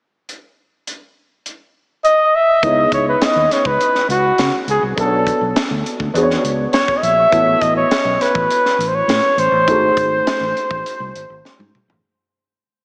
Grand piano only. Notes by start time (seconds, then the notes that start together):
2.63 B3 D#4 E4 G#4 C#5
4.96 B3 D4 F#4 A4 B4
5.05 C#5
6.14 B3 D4 F#4 G#4 C5
6.23 C#5
7.32 B3 E4 F#4 A4 C#5
9.67 A3 D#4 F#4 G#4 A4
9.76 C5